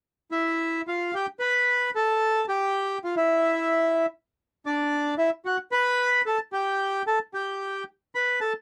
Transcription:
\new Staff \with { instrumentName = "Bandoneon" } { \time 4/4 \key e \phrygian \tempo 4 = 111 r8 <e' e''>4 <f' f''>8 <g' g''>8 <b' b''>4 <a' a''>8~ | <a' a''>8 <g' g''>4 <f' f''>16 <e' e''>4.~ <e' e''>16 r8 | r8 <d' d''>4 <e' e''>8 <fis' fis''>8 <b' b''>4 <a' a''>8 | <g' g''>4 <a' a''>8 <g' g''>4 r8 <b' b''>8 <a' a''>8 | }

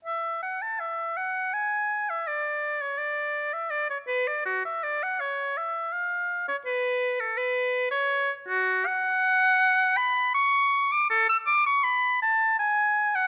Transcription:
\new Staff \with { instrumentName = "Oboe" } { \time 3/4 \key fis \minor \tempo 4 = 82 e''8 fis''16 a''16 e''8 fis''8 gis''8. e''16 | d''8. cis''16 d''8. e''16 d''16 cis''16 b'16 d''16 | fis'16 e''16 d''16 fis''16 cis''8 e''8 f''8. cis''16 | b'8. a'16 b'8. cis''8. fis'8 |
fis''4. b''8 cis'''8. d'''16 | a'16 e'''16 d'''16 cis'''16 b''8 a''8 gis''8. fis''16 | }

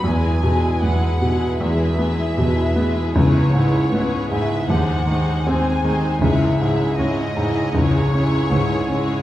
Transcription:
<<
  \new Staff \with { instrumentName = "Violin section" } { \time 4/4 \key cis \minor \tempo 4 = 78 gis''4 fis''4 e''2 | cis''4. e''8 fis''4 gis''4 | e''4 dis''4 cis''2 | }
  \new Staff \with { instrumentName = "Violin section" } { \time 4/4 \key cis \minor <gis' b'>8 <gis' b'>8 <gis' b'>8 <gis' b'>8 <gis' b'>8 <gis' b'>8 <gis' b'>8 <gis' b'>8 | <gis' b'>8 <gis' b'>8 <gis' b'>8 <gis' b'>8 <gis' bis'>8 <gis' bis'>8 <gis' bis'>8 <gis' bis'>8 | <gis' cis''>8 <gis' cis''>8 <gis' cis''>8 <gis' cis''>8 <gis' cis''>8 <gis' cis''>8 <gis' cis''>8 <gis' cis''>8 | }
  \new Staff \with { instrumentName = "Viola section" } { \time 4/4 \key cis \minor <gis e'>8 <gis e'>8 <gis e'>8 <gis e'>8 <gis e'>8 <gis e'>8 <gis e'>8 <gis e'>8 | <gis e'>8 <gis e'>8 <gis e'>8 <gis e'>8 <gis dis'>8 <gis dis'>8 <gis dis'>8 <gis dis'>8 | <gis e'>8 <gis e'>8 <gis e'>8 <gis e'>8 <gis e'>8 <gis e'>8 <gis e'>8 <gis e'>8 | }
  \new Staff \with { instrumentName = "Grand piano" } { \clef bass \time 4/4 \key cis \minor e,8 b,8 b8 b,8 e,8 b8 b,8 b8 | cis,8 gis,8 b8 gis,8 dis,8 dis8 bis8 dis8 | cis,8 gis,8 cis'8 gis,8 cis,8 cis'8 gis,8 cis'8 | }
  \new Staff \with { instrumentName = "Cello section" } { \clef bass \time 4/4 \key cis \minor e,4 e,4 e,4 e,4 | cis,4 cis,4 dis,4 dis,4 | cis,4 cis,4 cis,4 cis,4 | }
>>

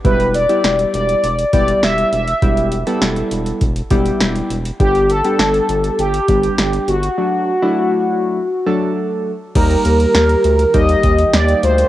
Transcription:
<<
  \new Staff \with { instrumentName = "Analog polysynth" } { \time 4/4 \key e \minor \tempo 4 = 101 b'8 d''4 d''4 d''8 e''8 e''8~ | e''8 r2. r8 | g'8 a'4. g'4. fis'8~ | fis'2. r4 |
bes'2 ees''4 d''8 c''8 | }
  \new Staff \with { instrumentName = "Synth keys" } { \time 4/4 \key e \minor <g b e' g'>8 r16 <g b e' g'>4~ <g b e' g'>16 r8 <g b e' g'>4 r8 | <g b e' g'>8 r16 <g b e' a'>4~ <g b e' a'>16 r8 <g b e' g'>4 r8 | <g b d' g'>8 r16 <g b d' g'>4~ <g b d' g'>16 r8 <g b d' g'>4 r8 | <fis a d' fis'>8 r16 <fis a d' e'>4~ <fis a d' e'>16 r8 <fis a d' a'>4 r8 |
<g bes ees' g'>4. r8 <g bes ees' g'>4. r8 | }
  \new Staff \with { instrumentName = "Analog synth pad" } { \clef bass \time 4/4 \key e \minor r1 | r1 | r1 | r1 |
<ees g bes g'>1 | }
  \new Staff \with { instrumentName = "Analog synth bass" } { \clef bass \time 4/4 \key e \minor e,,4 e,,8 e,,8 e,,8 e,,8 e,,8 e,,8 | e,,4 e,,8 e,,8 e,,8 e,,8 e,,8 e,,8 | g,,4 g,,8 g,,8 g,,8 g,,8 g,,8 g,,8 | r1 |
ees,8 ees,8 ees,8 d,8 ees,8 ees,8 ees,8 d,8 | }
  \new DrumStaff \with { instrumentName = "Drums" } \drummode { \time 4/4 <hh bd>16 hh16 hh16 hh16 <hh sn>16 hh16 hh16 hh16 hh16 hh16 <hh bd>16 hh16 <hh sn>16 hh16 hh16 hh16 | <hh bd>16 hh16 hh16 hh16 <hh sn>16 hh16 hh16 hh16 <hh bd>16 hh16 <hh bd>16 hh16 <hh sn>16 hh16 hh16 hh16 | <hh bd>16 hh16 hh16 hh16 <hh sn>16 hh16 hh16 hh16 hh16 hh16 <hh bd>16 hh16 <hh sn>16 hh16 hh16 hh16 | r4 r4 r4 r4 |
<cymc hh bd>16 hh16 hh16 hh16 <hh sn>16 hh16 hh16 hh16 <hh bd>16 hh16 <hh bd>16 hh16 <hh sn>16 hh16 hh16 hh16 | }
>>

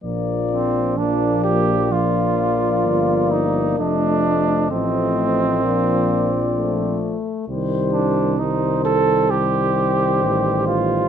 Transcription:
<<
  \new Staff \with { instrumentName = "Cornet" } { \time 4/4 \key bes \major \tempo 4 = 65 d''4 d''4 d''2 | ees''4 ees''4 d''4. r8 | c''4 c''4 c''2 | }
  \new Staff \with { instrumentName = "Trumpet" } { \time 4/4 \key bes \major r8 c'8 d'8 g'8 f'4. ees'8 | d'4 c'2~ c'8 r8 | r8 d'8 ees'8 a'8 g'4. f'8 | }
  \new Staff \with { instrumentName = "French horn" } { \time 4/4 \key bes \major bes4 bes4 bes2 | a4 a4 bes8 r8 a4 | g4 g4 g2 | }
  \new Staff \with { instrumentName = "Trombone" } { \clef bass \time 4/4 \key bes \major f4 f4 f2 | f4 f4 f4. r8 | ees4 ees4 ees2 | }
  \new Staff \with { instrumentName = "Tuba" } { \clef bass \time 4/4 \key bes \major bes,,2. g,,4 | f,,4 a,,4 bes,,4. r8 | c,2. a,,4 | }
>>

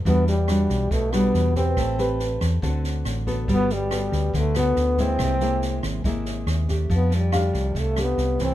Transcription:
<<
  \new Staff \with { instrumentName = "Grand piano" } { \time 4/4 \key e \minor \tempo 4 = 140 r1 | r1 | r1 | r1 |
r4 f''2. | }
  \new Staff \with { instrumentName = "Nylon-string guitar" } { \time 4/4 \key e \minor << { <g d' fis'>8 r8 <g d' fis'>4. <g d' fis'>4 <c' g' b'>8~ | <c' g' b'>8 <c' g' b'>4. <c' fis' a'>4. <b fis' a'>8~ | <b fis' a'>4 <b fis' a'>4. <b fis' a'>4 <gis ais e'>8~ | <gis ais e'>8 <gis bes e'>4. <gis bes e'>4. <a d' g'>8~ |
<a d' g'>4 <a d' g'>4. <a d' g'>4 <e a c'>8 | } \\ { e2 b,2 | a2 d2 | g2 d2 | c2 c2 |
f2 c2 | } >> }
  \new Staff \with { instrumentName = "Trombone" } { \time 4/4 \key e \minor b8 g4. a8 b4 c'8~ | c'4. r2 r8 | b8 g4. a8 b4 c'8~ | c'4. r2 r8 |
b8 g4. a8 b4 c'8 | }
  \new Staff \with { instrumentName = "Fingered electric bass" } { \clef bass \time 4/4 \key e \minor e,4. b,,8 b,,4 e,4 | a,,4. e,8 d,4 a,,4 | g,,4. d,8 d,4 d,4 | c,4. gis,,8 gis,,4 dis,4 |
f,4. c,8 c,4 c,4 | }
  \new DrumStaff \with { instrumentName = "Drums" } \drummode { \time 4/4 <bd sn>8 sn8 <ss sn>8 <bd sn>8 <bd sn>8 <ss sn>8 sn8 <bd sn>8 | <bd ss sn>8 sn8 sn8 <bd ss sn>8 <bd sn>8 sn8 <ss sn>8 <bd sn>8 | <bd sn>8 sn8 <ss sn>8 <bd sn>8 <bd sn>8 <ss sn>8 sn8 <bd sn>8 | <bd ss sn>8 sn8 sn8 <bd ss sn>8 <bd sn>8 sn8 <ss sn>8 <bd sn>8 |
<bd sn>8 sn8 <ss sn>8 <bd sn>8 <bd sn>8 <ss sn>8 sn8 <bd sn>8 | }
>>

